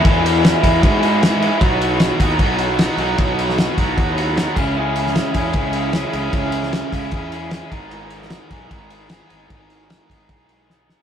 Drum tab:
CC |----------------|----------------|--------------x-|----------------|
RD |x-x-x-x-x-x-x-x-|x-x-x-x-x-x-x-x-|x-x-x-x-x-x-x---|--x-x-x-x-x-x-x-|
SD |----o-------o---|----o-------o---|---oo-------o---|---oo-------o---|
BD |o-----o-o-------|o-----o-o-------|o-----o-o-----o-|------o-o-------|

CC |----------------|----------------|----------------|
RD |x-x-x-x-x-x-x-x-|x-x-x-x-x-x-x-x-|x-x-x-x-x-x-----|
SD |---oo-------o---|---oo-------o---|----o-------o-o-|
BD |o-----o-o-----o-|------o-o-------|o-----o-o-------|